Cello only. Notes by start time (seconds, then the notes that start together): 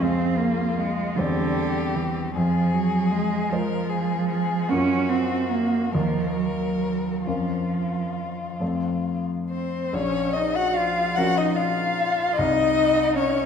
0.02 C4
0.39 A#3
0.78 G#3
1.16 D3
1.95 E3
2.34 F3
2.73 F#3
3.12 G#3
3.50 F3
4.70 C#4
5.09 C4
5.50 A#3
5.92 F3
6.35 F#3
7.26 F3
9.50 C4
9.93 C#4
10.35 D#4
10.55 F#4
10.76 F4
11.17 F#4
11.38 D#4
11.58 F4
12.38 D#4
13.16 C#4